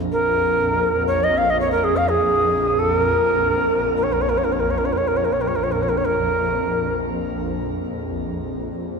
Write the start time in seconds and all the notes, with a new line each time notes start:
Already playing: A#1 F2
0.12 A#4
1.07 C#5
1.24 D#5
1.38 F5
1.50 D#5
1.60 C#5
1.72 A#4
1.84 G#4
1.97 F5
2.10 G#4
2.79 A4
2.95 A#4
3.97 A#4
4.03 C#5
4.13 A#4
4.21 C#5
4.29 A#4
4.38 C#5
4.44 A#4
4.52 C#5
4.60 A#4
4.70 C#5
4.78 A#4
4.85 C#5
4.93 A#4
4.97 C#5
5.08 A#4
5.17 C#5
5.25 A#4
5.33 C#5
5.41 A#4
5.48 C#5
5.56 A#4
5.63 C#5
5.72 A#4
5.83 C#5
5.89 A#4
5.97 C#5
6.06 A#4